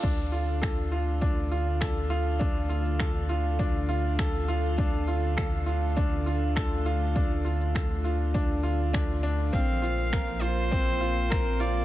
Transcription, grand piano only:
\new Staff \with { instrumentName = "Grand piano" } { \time 4/4 \key d \minor \tempo 4 = 101 d'8 f'8 a'8 f'8 d'8 f'8 a'8 f'8 | d'8 f'8 a'8 f'8 d'8 f'8 a'8 f'8 | d'8 f'8 a'8 f'8 d'8 f'8 a'8 f'8 | d'8 f'8 a'8 f'8 d'8 f'8 d'8 d'8 |
c'8 f'8 bes'8 f'8 c'8 f'8 bes'8 f'8 | }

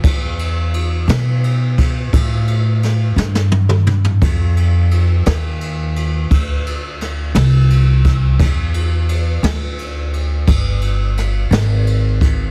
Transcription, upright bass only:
\new Staff \with { instrumentName = "Upright bass" } { \clef bass \time 12/8 \key a \minor \tempo 4. = 58 e,4. b,4. a,4. g,4. | f,4. dis,4. d,4. c,4. | e,4. d,4. g,,4. gis,,4. | }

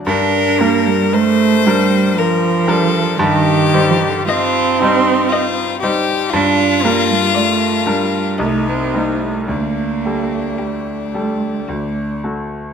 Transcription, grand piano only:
\new Staff \with { instrumentName = "Grand piano" } { \time 3/4 \key g \minor \tempo 4 = 56 g,8 <g d' bes'>4 <g d' bes'>4 <g d' bes'>8 | g,8 <g ees' c''>4 <g ees' c''>4 <g ees' c''>8 | g,8 <g d' bes'>4 <g d' bes'>8 c,8 <g ees' c''>8 | d,8 <g g' a'>4 <g g' a'>8 d,8 <a fis' a'>8 | }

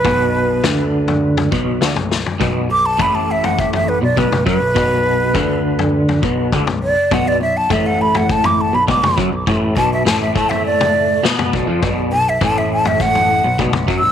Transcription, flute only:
\new Staff \with { instrumentName = "Flute" } { \time 4/4 \key b \minor \tempo 4 = 102 b'4. r2 r8 | r8 d'''16 a''16 b''16 a''16 e''16 fis''16 e''16 e''16 b'16 d''16 b'8 b'8~ | b'4. r2 d''8 | fis''16 d''16 e''16 a''16 e''16 fis''16 b''16 fis''16 a''16 d'''16 a''16 b''16 d'''8 r8 |
r8 a''16 e''16 a''16 e''16 a''16 e''16 d''4 r4 | r8 a''16 e''16 a''16 e''16 a''16 e''16 fis''4 \tuplet 3/2 { r4 e'''8 } | }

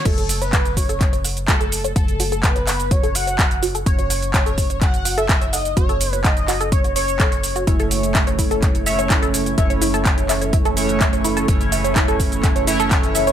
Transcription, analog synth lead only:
\new Staff \with { instrumentName = "Analog synth lead" } { \time 4/4 \key fis \minor \tempo 4 = 126 a'8. b'8. cis''4 r8 a'4 | a'4 b'4 cis''8 fis''4 r8 | cis''4 cis''4 fis''8. e''8. dis''8 | cis''4 dis''4 cis''8 cis''4. |
r1 | r1 | r1 | }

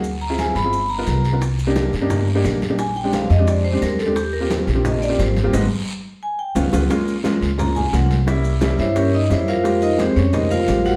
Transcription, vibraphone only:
\new Staff \with { instrumentName = "Vibraphone" } { \time 4/4 \key c \minor \tempo 4 = 175 r8 bes''8 aes''8 ces'''4 ais''8 ais''4 | r1 | aes''8 g''8 f''8 ees''8 d''8 c''8 bes'8 a'8 | g'8 bes'8 r4 ees''8 d''8 c''8 r8 |
r2 aes''8 g''8 f''8 r8 | r2 bes''8 aes''8 ges''8 r8 | r4. <e' c'' des'' e''>8 <des' g' bes' des''>8 <ees' ees''>8 <e' c'' des'' e''>8 <f' bes' c'' f''>8~ | <f' bes' c'' f''>8 <ees' bes' c'' ees''>8 <c' g' aes' c''>8 <des' des''>8 <ees' bes' c'' ees''>8 <f' bes' c'' f''>4 <ges' ges''>8 | }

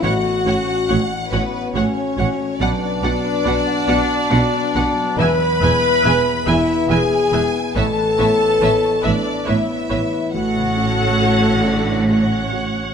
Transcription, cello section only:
\new Staff \with { instrumentName = "Cello section" } { \clef bass \time 3/4 \key fis \minor \tempo 4 = 70 a,8 a,8 a,8 a,8 a,8 a,8 | b,8 b,8 b,8 b,8 b,8 b,8 | e,8 e,8 e,8 e,8 e,8 e,8 | a,8 a,8 a,8 a,8 a,8 a,8 |
a,2. | }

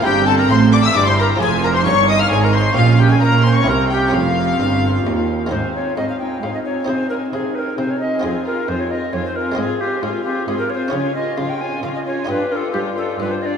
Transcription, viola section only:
\new Staff \with { instrumentName = "Viola section" } { \time 3/4 \key f \minor \tempo 4 = 133 c'2 e'4 | f'4 ees'2 | des'2 c'4 | c'2~ c'8 r8 |
\key aes \major c'8 c'8 c'8 c'8 c'8 c'8 | c'8 c'8 c'8 c'8 c'8 c'8 | c'8 c'8 c'8 c'8 c'8 c'8 | c'8 c'8 c'8 c'8 c'8 c'8 |
\key des \lydian des'8 des'8 des'8 des'8 des'8 des'8 | d'8 d'8 d'8 d'8 d'8 d'8 | }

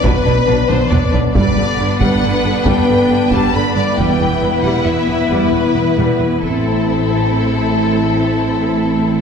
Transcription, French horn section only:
\new Staff \with { instrumentName = "French horn section" } { \time 3/4 \key a \dorian \tempo 4 = 137 <b d'>2. | <b d'>2.~ | <b d'>2. | <b e'>2.~ |
<b e'>2~ <b e'>8 <c' e'>8~ | <c' e'>2.~ | <c' e'>2. | }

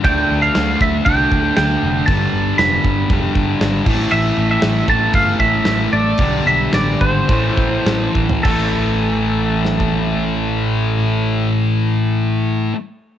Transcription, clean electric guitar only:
\new Staff \with { instrumentName = "Clean electric guitar" } { \time 4/4 \key g \mixolydian \tempo 4 = 112 g''8. f''8. e''8 g''4 g''4 | a''4 b''4. r4. | e''8. e''8. a''8 f''8 e''4 d''8~ | d''8 e''8 d''8 c''2 r8 |
a'1~ | a'1 | }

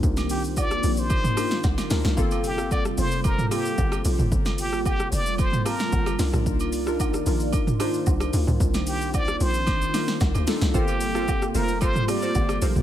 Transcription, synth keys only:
\new Staff \with { instrumentName = "Synth keys" } { \time 4/4 \key g \minor \tempo 4 = 112 r2 r8 <d' ees' f' bes'>8. r16 <d' ees' f' bes'>8 | <bes c' f' a'>8 r16 <bes c' f' a'>8 r16 <bes c' f' c''>8. r16 <bes c' f' a'>4. | r2 r8 <bes c' f' a''>8. r16 <d' ees' f' bes'>8~ | <d' ees' f' bes'>8 r16 <d' ees' f' bes'>8 r16 <d' ees' f' bes'>8. r16 <d' ees' f' c''>4. |
r2 r8 <d' ees' f' bes'>8. r16 <d' ees' f' a'>8 | <bes c' f' a'>8 r16 <bes c' f' a'>8 r16 <a bes c' f' c''>8. r16 <bes c' f' g'>4. | }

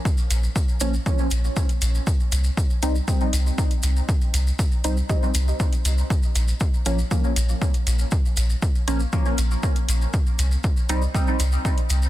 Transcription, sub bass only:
\new Staff \with { instrumentName = "Sub bass" } { \clef bass \time 4/4 \key bes \dorian \tempo 4 = 119 r8 bes,,8 r8 bes,,8 r8 bes,,8 r8 bes,,8 | r8 c,8 r8 c,8 r8 c,8 r8 c,8 | r8 c,8 r8 c,8 r8 c,8 r8 c,8 | r8 bes,,8 r8 bes,,8 r8 bes,,8 r8 bes,,8 |
r8 bes,,8 r8 bes,,8 r8 bes,,8 r8 bes,,8 | r8 c,8 r8 c,8 r8 c,8 r8 c,8 | }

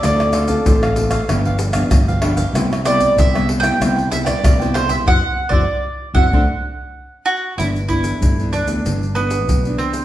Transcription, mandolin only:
\new Staff \with { instrumentName = "Mandolin" } { \time 4/4 \key d \mixolydian \tempo 4 = 95 d''2.~ d''8 r8 | r8 d''8 \tuplet 3/2 { e''8. r16 g''8~ } g''8 e''16 d''8. c''16 e''16 | \tuplet 3/2 { fis''4 d''8~ } d''8. fis''4.~ fis''16 fis'8 | \key g \major e'8 e'4 d'4 b4 c'8 | }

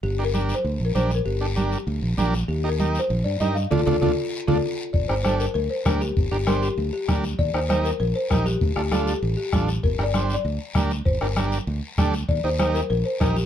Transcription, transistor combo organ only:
\new Staff \with { instrumentName = "Transistor combo organ" } { \time 4/4 \key g \minor \tempo 4 = 196 r8 <d' g' bes'>8 <d' g' bes'>8 r4. <d' g' bes'>8 r8 | r8 <d' g' a'>8 <d' g' bes'>8 r4. <d' g' bes'>8 r8 | r8 <ees' g' bes'>8 <ees' g' bes'>8 r4. <ees' g' bes'>8 r8 | <d' f' a'>8 <d' f' a'>8 <d' f' a'>8 r4 <d' f' a'>8 r4 |
r8 <d' g' bes'>8 <d' g' a'>8 r4. <d' g' bes'>8 r8 | r8 <d' g' bes'>8 <d' g' c''>8 r4. <d' g' bes'>8 r8 | r8 <ees' g' bes'>8 <ees' g' bes'>8 r4. <ees' g' bes'>8 r8 | r8 <d' f' a'>8 <d' f' a'>8 r4. <d' f' a'>8 r8 |
r8 <d' g' bes'>8 <d' g' c''>8 r4. <d' g' bes'>8 r8 | r8 <d' g' bes'>8 <d' g' bes'>8 r4. <d' g' a'>8 r8 | r8 <ees' g' bes'>8 <ees' g' bes'>8 r4. <ees' g' bes'>8 r8 | }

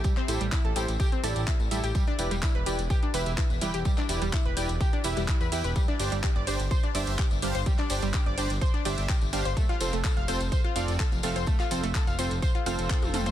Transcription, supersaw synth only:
\new Staff \with { instrumentName = "Supersaw synth" } { \time 4/4 \key e \phrygian \tempo 4 = 126 r8 <e' g' a' c''>16 r8. <e' g' a' c''>16 r8. <e' g' a' d''>8 r8 <e' g' a' e''>16 r16 | r8 <e' g' b' d''>16 r8. <e' g' b' d''>16 r8. <e' g' b' e''>8 r8 <e' g' b' g''>16 r16 | r8 <e' g' b' d''>16 r8. <e' g' b' d''>16 r8. <e' g' b' e''>8 r8 <e' g' b' g''>16 r16 | r8 <d' g' c'' d''>16 r8. <d' g' c'' d''>16 r8. <d' g' c'' e''>8 r8 <d' g' c'' f''>16 r16 |
r8 <d' g' c'' d''>16 r8. <d' g' c'' d''>16 r8. <d' g' c'' e''>8 r8 <d' g' c'' f''>16 r16 | r8 <c' f' a' c''>16 r8. <c' f' a' c''>16 r8. <c' f' a' d''>8 r8 <c' f' a' f''>16 r16 | r8 <c' f' a' c''>16 r8. <c' f' a' c''>16 r8. <c' f' a' c''>4 <c' f' a' c''>16 r16 | }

